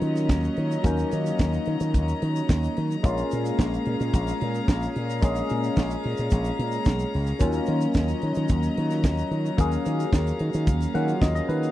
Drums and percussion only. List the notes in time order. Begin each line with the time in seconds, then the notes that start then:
0.01 closed hi-hat
0.15 snare, closed hi-hat, shaker
0.29 kick, snare, shaker
0.42 closed hi-hat, shaker
0.57 closed hi-hat
0.71 closed hi-hat, shaker
0.84 kick, closed hi-hat, shaker
0.97 closed hi-hat, shaker
1.11 closed hi-hat, shaker
1.26 closed hi-hat, shaker
1.39 kick, snare, shaker
1.53 closed hi-hat, shaker
1.65 closed hi-hat
1.80 closed hi-hat, shaker
1.94 kick, closed hi-hat, shaker
2.08 closed hi-hat, shaker
2.22 closed hi-hat
2.35 closed hi-hat, shaker
2.49 kick, snare, shaker
2.63 closed hi-hat, shaker
2.77 closed hi-hat
2.90 closed hi-hat, shaker
3.04 kick, closed hi-hat, shaker
3.17 closed hi-hat, shaker
3.31 closed hi-hat, shaker
3.45 closed hi-hat, shaker
3.59 kick, snare, shaker
3.74 closed hi-hat, shaker
3.85 closed hi-hat
4.00 closed hi-hat, shaker
4.14 kick, closed hi-hat, shaker
4.27 closed hi-hat, shaker
4.41 closed hi-hat
4.54 closed hi-hat, shaker
4.68 kick, snare, shaker
4.82 closed hi-hat, shaker
4.96 closed hi-hat
5.09 closed hi-hat, shaker
5.22 kick, closed hi-hat, shaker
5.35 closed hi-hat, shaker
5.49 closed hi-hat, shaker
5.63 closed hi-hat, shaker
5.76 kick, snare, shaker
5.90 closed hi-hat, shaker
6.03 open hi-hat
6.17 closed hi-hat, shaker
6.31 kick, closed hi-hat, shaker
6.44 closed hi-hat, shaker
6.59 closed hi-hat
6.72 closed hi-hat, shaker
6.85 kick, snare, shaker
6.99 closed hi-hat, shaker
7.14 open hi-hat
7.26 closed hi-hat, shaker
7.40 kick, closed hi-hat, shaker
7.53 closed hi-hat, shaker
7.66 closed hi-hat, shaker
7.81 closed hi-hat, shaker
7.94 kick, snare, shaker
8.08 closed hi-hat, shaker
8.21 closed hi-hat
8.35 closed hi-hat, shaker
8.48 kick, closed hi-hat, shaker
8.63 closed hi-hat, shaker
8.77 closed hi-hat
8.90 snare, closed hi-hat, shaker
9.04 kick, snare, shaker
9.17 closed hi-hat, shaker
9.31 closed hi-hat
9.45 closed hi-hat, shaker
9.58 kick, closed hi-hat, shaker
9.71 closed hi-hat, shaker
9.86 closed hi-hat, shaker
10.00 closed hi-hat, shaker
10.13 kick, snare, shaker
10.27 closed hi-hat, shaker
10.39 closed hi-hat
10.53 closed hi-hat, shaker
10.67 kick, closed hi-hat, shaker
10.80 closed hi-hat, shaker
10.95 closed hi-hat
11.08 closed hi-hat, shaker
11.22 kick, snare, shaker
11.35 closed hi-hat, shaker
11.49 closed hi-hat
11.63 closed hi-hat, shaker